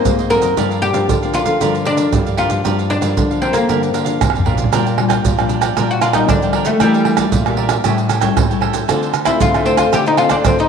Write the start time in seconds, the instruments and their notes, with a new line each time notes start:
Already playing: nylon-string guitar F#3 A#3 C4, oud A#3, cavaquinho G#4 C5 D#5
0.05 nylon-string guitar G#2 D#3, pandeiro, maracas, surdo
0.19 cavaquinho G#4 C5 D#5, pandeiro, maracas
0.30 nylon-string guitar F#3 A#3 C4, cavaquinho F#4 G#4 C5 D#5, oud A#4, pandeiro
0.41 nylon-string guitar F#2, cavaquinho G#4 C5 D#5, pandeiro, maracas
0.57 nylon-string guitar G2 F3 A#3 D4, cavaquinho G4 A#4 D5 F5, pandeiro, maracas, surdo
0.70 cavaquinho A#4 D5 F5, pandeiro, maracas
0.82 oud G4, muted cavaquinho stroke, pandeiro
0.93 nylon-string guitar G2 F3 A#3 D4, cavaquinho A#4 D5 F5, pandeiro, maracas
1.09 nylon-string guitar D3, pandeiro, maracas, surdo
1.22 nylon-string guitar F3 A#3 D4, cavaquinho A#4 D5 F5, pandeiro, maracas
1.33 oud F4, cavaquinho G4 A#4 D5 F5, pandeiro, maracas
1.45 nylon-string guitar D3 F3 A#3 D4, cavaquinho A#4 D5 F5, pandeiro, maracas
1.61 nylon-string guitar G2 D3 F3 A#3 D4, cavaquinho G4 A#4 D5 F5, pandeiro, maracas, surdo
1.75 muted cavaquinho stroke, pandeiro, maracas
1.85 oud D4, cavaquinho G4 A#4 D5 F5, pandeiro
1.97 nylon-string guitar F3 A#3 D4, cavaquinho A#4 D5 F5, pandeiro, maracas
2.13 nylon-string guitar G2 D3, pandeiro, maracas, surdo
2.26 cavaquinho A#4 D5 F5, pandeiro, maracas
2.37 nylon-string guitar F3 A#3 D4, oud F4, cavaquinho G4 A#4 D5 F5, pandeiro
2.50 nylon-string guitar G2, cavaquinho A#4 D5 F5, pandeiro, maracas
2.64 nylon-string guitar G2 F3 A#3 D4, cavaquinho G4 A#4 D5 F5, pandeiro, maracas, surdo
2.78 cavaquinho A#4 D5 F5, pandeiro, maracas
2.90 oud D4, muted cavaquinho stroke, pandeiro
3.01 nylon-string guitar G2 F3 A#3 D4, cavaquinho A#4 D5 F5, pandeiro, maracas
3.16 nylon-string guitar D3, pandeiro, maracas, surdo
3.30 nylon-string guitar F3 A#3 D4, cavaquinho A#4 D5 F5, pandeiro, maracas
3.41 oud C4, cavaquinho G4 A#4 D5 F5, pandeiro
3.53 nylon-string guitar D3 F3 A#3 D4, oud A#3, cavaquinho A#4 D5 F5, pandeiro, maracas
3.69 nylon-string guitar G2 D3 F3 A#3 D4, cavaquinho G4 A#4 D5 F5, pandeiro, maracas, surdo
3.83 muted cavaquinho stroke, pandeiro, maracas
3.93 nylon-string guitar D3, cavaquinho G4 A#4 D5 F5, pandeiro, maracas
4.04 nylon-string guitar F3 A#3 D4, cavaquinho A#4 D5 F5, pandeiro, maracas
4.21 nylon-string guitar C3 D3, pandeiro, tamborim, maracas, surdo
4.30 tamborim
4.34 cavaquinho A#4 D5 F5, pandeiro, maracas
4.39 surdo
4.45 nylon-string guitar A#2 F3 A#3 D4, cavaquinho G4 A#4 D5 F5, pandeiro, surdo
4.56 cavaquinho A#4 D5 F5, pandeiro, maracas, surdo
4.64 surdo
4.72 nylon-string guitar A#2 G3 D4 F4, cavaquinho D4 A#4 D5 G5, pandeiro, tamborim, maracas, surdo
4.86 cavaquinho A#4 D5 G5, pandeiro, maracas
4.97 nylon-string guitar G3 D4 F4, muted cavaquinho stroke, pandeiro, tamborim
5.09 cavaquinho A#4 D5 G5, pandeiro, tamborim, maracas, surdo
5.25 nylon-string guitar A#2 F3, pandeiro, maracas, surdo
5.38 nylon-string guitar G3 D4 F4, cavaquinho A#4 D5 G5, pandeiro, tamborim, maracas
5.49 cavaquinho D4 A#4 D5 G5, pandeiro, maracas
5.61 cavaquinho A#4 D5 G5, pandeiro, tamborim, maracas, surdo
5.77 nylon-string guitar A#2 G3 D4 F4, cavaquinho D4 A#4 D5 G5, pandeiro, tamborim, maracas, surdo
5.91 oud F#4, muted cavaquinho stroke, pandeiro, maracas
6.01 cavaquinho D4 A#4 D5 G5, oud F4, pandeiro, tamborim, maracas
6.13 nylon-string guitar G3 D4 F4, oud D#4, cavaquinho A#4 D5 G5, pandeiro, tamborim, maracas, surdo
6.29 nylon-string guitar D3 F3, oud D4, pandeiro, tamborim, maracas, surdo
6.42 nylon-string guitar G3 D4 F4, cavaquinho A#4 D5 G5, pandeiro, maracas
6.53 cavaquinho D4 A#4 D5 G5, pandeiro, tamborim
6.65 oud A3, cavaquinho A#4 D5 G5, pandeiro, maracas, surdo
6.80 nylon-string guitar E3 A#3 D4 G4, oud G3, cavaquinho G4 A#4 D5 E5, pandeiro, tamborim, maracas, surdo
6.94 cavaquinho A#4 D5 E5, pandeiro, maracas
7.05 nylon-string guitar A#3 D4 G4, muted cavaquinho stroke, pandeiro, tamborim
7.17 cavaquinho A#4 D5 E5, pandeiro, tamborim, maracas, surdo
7.32 nylon-string guitar A#2 E3, pandeiro, maracas, surdo
7.46 nylon-string guitar A#3 D4 G4, cavaquinho A#4 D5 E5, pandeiro, tamborim, maracas
7.57 cavaquinho G4 A#4 D5 E5, pandeiro
7.69 cavaquinho A#4 D5 E5, pandeiro, tamborim, maracas, surdo
7.84 nylon-string guitar A2 G3 C#4 E4, cavaquinho G4 A4 C#5 G5, pandeiro, tamborim, maracas, surdo
7.98 muted cavaquinho stroke, pandeiro, maracas
8.08 cavaquinho G4 A4 C#5 G5, pandeiro, tamborim, maracas
8.21 nylon-string guitar G3 C#4 E4, cavaquinho A4 C#5 G5, pandeiro, tamborim, maracas, surdo
8.36 nylon-string guitar A2 E3, pandeiro, tamborim, maracas, surdo
8.50 nylon-string guitar G3 C#4 E4, cavaquinho A4 C#5 G5, pandeiro, maracas
8.61 cavaquinho G4 A4 C#5 G5, pandeiro, tamborim
8.73 cavaquinho A4 C#5 G5, pandeiro, maracas, surdo
8.88 nylon-string guitar D3 A3 C4 F4, cavaquinho F4 A4 C5 D5, pandeiro, tamborim, maracas, surdo
9.02 cavaquinho A4 C5 D5, pandeiro, maracas
9.13 muted cavaquinho stroke, pandeiro, tamborim, maracas
9.25 nylon-string guitar A3 C4 F4, oud E4, cavaquinho A4 C5 D5, pandeiro, tamborim, maracas, surdo
9.40 nylon-string guitar A2 D3, oud F4, pandeiro, maracas, surdo
9.54 oud A3, cavaquinho A4 C5 D5, pandeiro, tamborim, maracas
9.65 nylon-string guitar A3 C4 F4, oud C4, cavaquinho F4 A4 C5 D5, pandeiro
9.77 oud F4, cavaquinho A4 C5 D5, pandeiro, tamborim, maracas, surdo
9.92 nylon-string guitar D3, cavaquinho F4 A4 C5 D5, oud G4, pandeiro, tamborim, maracas, surdo
10.06 oud D#4, muted cavaquinho stroke, pandeiro, maracas
10.17 nylon-string guitar A3 C4 F4, cavaquinho F4 A4 C5 D5, oud F4, pandeiro, tamborim
10.29 oud D4, cavaquinho A4 C5 D5, pandeiro, tamborim, maracas, surdo
10.45 nylon-string guitar A2 D3 A3 C4 F4, oud C4, pandeiro, tamborim, maracas, surdo
10.58 oud D#4, cavaquinho A4 C5 D5, pandeiro, maracas